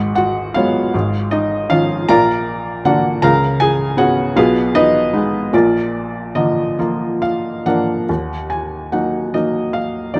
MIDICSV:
0, 0, Header, 1, 2, 480
1, 0, Start_track
1, 0, Tempo, 766284
1, 589, Time_signature, 6, 3, 24, 8
1, 3464, Tempo, 825309
1, 3944, Tempo, 869565
1, 4904, Tempo, 826446
1, 6125, End_track
2, 0, Start_track
2, 0, Title_t, "Felt piano"
2, 0, Program_c, 0, 0
2, 0, Control_c, 0, 64, 127
2, 0, Note_on_c, 0, 32, 52
2, 0, Note_on_c, 0, 44, 58
2, 0, Note_on_c, 0, 66, 57
2, 0, Note_on_c, 0, 71, 54
2, 0, Note_on_c, 0, 75, 59
2, 0, Note_on_c, 0, 78, 93
2, 81, Note_off_c, 0, 66, 0
2, 81, Note_off_c, 0, 71, 0
2, 81, Note_off_c, 0, 75, 0
2, 87, Note_off_c, 0, 78, 0
2, 96, Note_on_c, 0, 78, 79
2, 109, Note_on_c, 0, 66, 64
2, 335, Note_off_c, 0, 66, 0
2, 341, Note_on_c, 0, 77, 75
2, 350, Note_on_c, 0, 54, 43
2, 351, Note_on_c, 0, 56, 38
2, 351, Note_on_c, 0, 73, 53
2, 352, Note_on_c, 0, 65, 50
2, 353, Note_off_c, 0, 78, 0
2, 353, Note_on_c, 0, 59, 48
2, 565, Note_off_c, 0, 32, 0
2, 568, Note_off_c, 0, 44, 0
2, 582, Note_off_c, 0, 54, 0
2, 583, Note_off_c, 0, 56, 0
2, 584, Note_off_c, 0, 59, 0
2, 589, Note_on_c, 0, 44, 57
2, 591, Note_on_c, 0, 32, 54
2, 596, Control_c, 0, 64, 0
2, 696, Control_c, 0, 64, 127
2, 797, Note_off_c, 0, 77, 0
2, 803, Note_off_c, 0, 65, 0
2, 803, Note_off_c, 0, 73, 0
2, 822, Note_on_c, 0, 75, 67
2, 830, Note_on_c, 0, 63, 57
2, 1052, Note_off_c, 0, 63, 0
2, 1063, Note_on_c, 0, 51, 45
2, 1063, Note_on_c, 0, 77, 81
2, 1065, Note_on_c, 0, 53, 42
2, 1066, Note_on_c, 0, 61, 46
2, 1071, Note_off_c, 0, 75, 0
2, 1076, Note_on_c, 0, 65, 61
2, 1283, Note_off_c, 0, 32, 0
2, 1286, Note_off_c, 0, 44, 0
2, 1289, Note_off_c, 0, 77, 0
2, 1295, Note_off_c, 0, 65, 0
2, 1298, Note_off_c, 0, 51, 0
2, 1299, Note_off_c, 0, 53, 0
2, 1300, Note_off_c, 0, 61, 0
2, 1306, Note_on_c, 0, 82, 96
2, 1308, Note_on_c, 0, 34, 59
2, 1309, Note_on_c, 0, 46, 64
2, 1314, Note_on_c, 0, 77, 62
2, 1315, Note_on_c, 0, 70, 64
2, 1315, Note_on_c, 0, 74, 67
2, 1316, Control_c, 0, 64, 0
2, 1430, Control_c, 0, 64, 127
2, 1760, Note_off_c, 0, 82, 0
2, 1764, Note_off_c, 0, 70, 0
2, 1764, Note_off_c, 0, 74, 0
2, 1764, Note_off_c, 0, 77, 0
2, 1786, Note_on_c, 0, 50, 47
2, 1786, Note_on_c, 0, 58, 46
2, 1786, Note_on_c, 0, 78, 76
2, 1790, Note_on_c, 0, 62, 57
2, 1795, Note_on_c, 0, 66, 59
2, 1996, Note_off_c, 0, 34, 0
2, 2000, Note_off_c, 0, 46, 0
2, 2009, Note_off_c, 0, 66, 0
2, 2014, Note_off_c, 0, 50, 0
2, 2014, Note_off_c, 0, 58, 0
2, 2016, Note_off_c, 0, 62, 0
2, 2019, Note_on_c, 0, 82, 89
2, 2021, Note_on_c, 0, 37, 62
2, 2022, Note_on_c, 0, 49, 63
2, 2025, Note_on_c, 0, 70, 69
2, 2028, Note_off_c, 0, 78, 0
2, 2030, Control_c, 0, 64, 0
2, 2030, Note_on_c, 0, 77, 63
2, 2134, Control_c, 0, 64, 127
2, 2241, Note_off_c, 0, 70, 0
2, 2244, Note_off_c, 0, 77, 0
2, 2255, Note_on_c, 0, 80, 86
2, 2261, Note_off_c, 0, 82, 0
2, 2266, Note_on_c, 0, 68, 66
2, 2481, Note_off_c, 0, 68, 0
2, 2486, Note_on_c, 0, 59, 49
2, 2490, Note_on_c, 0, 61, 48
2, 2491, Note_on_c, 0, 68, 53
2, 2492, Note_on_c, 0, 78, 86
2, 2499, Note_off_c, 0, 80, 0
2, 2499, Note_on_c, 0, 66, 72
2, 2706, Note_off_c, 0, 37, 0
2, 2711, Note_off_c, 0, 49, 0
2, 2718, Note_off_c, 0, 66, 0
2, 2721, Note_off_c, 0, 59, 0
2, 2723, Note_off_c, 0, 61, 0
2, 2724, Note_off_c, 0, 68, 0
2, 2732, Note_on_c, 0, 35, 60
2, 2733, Note_on_c, 0, 47, 68
2, 2734, Note_on_c, 0, 77, 84
2, 2737, Note_on_c, 0, 65, 63
2, 2738, Note_off_c, 0, 78, 0
2, 2739, Control_c, 0, 64, 0
2, 2739, Note_on_c, 0, 71, 60
2, 2742, Note_on_c, 0, 68, 64
2, 2833, Control_c, 0, 64, 127
2, 2959, Note_off_c, 0, 65, 0
2, 2960, Note_off_c, 0, 71, 0
2, 2962, Note_off_c, 0, 68, 0
2, 2975, Note_on_c, 0, 75, 93
2, 2978, Note_on_c, 0, 63, 67
2, 2978, Note_on_c, 0, 71, 67
2, 2982, Note_off_c, 0, 77, 0
2, 3210, Note_off_c, 0, 63, 0
2, 3215, Note_on_c, 0, 56, 50
2, 3217, Note_on_c, 0, 59, 42
2, 3220, Note_on_c, 0, 63, 49
2, 3440, Note_off_c, 0, 35, 0
2, 3441, Note_off_c, 0, 75, 0
2, 3443, Note_off_c, 0, 71, 0
2, 3444, Note_off_c, 0, 47, 0
2, 3456, Note_off_c, 0, 56, 0
2, 3457, Note_off_c, 0, 59, 0
2, 3459, Note_off_c, 0, 63, 0
2, 3464, Note_on_c, 0, 34, 57
2, 3464, Note_on_c, 0, 46, 63
2, 3470, Note_on_c, 0, 74, 61
2, 3473, Control_c, 0, 64, 0
2, 3473, Note_on_c, 0, 70, 45
2, 3474, Note_on_c, 0, 65, 44
2, 3590, Control_c, 0, 64, 127
2, 3941, Note_on_c, 0, 53, 40
2, 3942, Note_on_c, 0, 75, 68
2, 3945, Note_on_c, 0, 50, 44
2, 3945, Note_on_c, 0, 58, 40
2, 4172, Note_off_c, 0, 53, 0
2, 4176, Note_off_c, 0, 58, 0
2, 4179, Note_off_c, 0, 65, 0
2, 4181, Note_on_c, 0, 53, 44
2, 4184, Note_on_c, 0, 58, 39
2, 4187, Note_on_c, 0, 65, 47
2, 4408, Note_off_c, 0, 74, 0
2, 4410, Note_off_c, 0, 70, 0
2, 4414, Note_off_c, 0, 50, 0
2, 4420, Note_on_c, 0, 77, 66
2, 4441, Note_off_c, 0, 75, 0
2, 4647, Note_off_c, 0, 77, 0
2, 4651, Note_off_c, 0, 53, 0
2, 4653, Note_off_c, 0, 58, 0
2, 4654, Note_off_c, 0, 65, 0
2, 4664, Note_on_c, 0, 53, 37
2, 4664, Note_on_c, 0, 78, 69
2, 4668, Note_on_c, 0, 58, 37
2, 4668, Note_on_c, 0, 62, 45
2, 4675, Note_on_c, 0, 70, 44
2, 4881, Note_off_c, 0, 34, 0
2, 4881, Note_off_c, 0, 46, 0
2, 4895, Note_off_c, 0, 53, 0
2, 4897, Note_off_c, 0, 58, 0
2, 4897, Note_off_c, 0, 62, 0
2, 4903, Note_on_c, 0, 39, 44
2, 4912, Control_c, 0, 64, 0
2, 5028, Control_c, 0, 64, 127
2, 5123, Note_off_c, 0, 78, 0
2, 5139, Note_on_c, 0, 80, 52
2, 5372, Note_off_c, 0, 70, 0
2, 5384, Note_on_c, 0, 54, 34
2, 5385, Note_on_c, 0, 78, 60
2, 5387, Note_on_c, 0, 58, 31
2, 5389, Note_on_c, 0, 63, 37
2, 5393, Note_off_c, 0, 80, 0
2, 5611, Note_off_c, 0, 78, 0
2, 5621, Note_off_c, 0, 54, 0
2, 5622, Note_off_c, 0, 58, 0
2, 5624, Note_off_c, 0, 63, 0
2, 5627, Note_on_c, 0, 75, 58
2, 5630, Note_on_c, 0, 54, 36
2, 5630, Note_on_c, 0, 58, 34
2, 5633, Note_on_c, 0, 63, 38
2, 5855, Note_on_c, 0, 77, 62
2, 5874, Note_off_c, 0, 75, 0
2, 6090, Note_off_c, 0, 54, 0
2, 6090, Note_off_c, 0, 58, 0
2, 6091, Note_on_c, 0, 74, 58
2, 6092, Note_off_c, 0, 63, 0
2, 6100, Note_on_c, 0, 54, 42
2, 6100, Note_on_c, 0, 58, 39
2, 6104, Note_on_c, 0, 63, 43
2, 6106, Note_off_c, 0, 77, 0
2, 6125, Note_off_c, 0, 39, 0
2, 6125, Note_off_c, 0, 54, 0
2, 6125, Note_off_c, 0, 58, 0
2, 6125, Note_off_c, 0, 63, 0
2, 6125, Note_off_c, 0, 74, 0
2, 6125, End_track
0, 0, End_of_file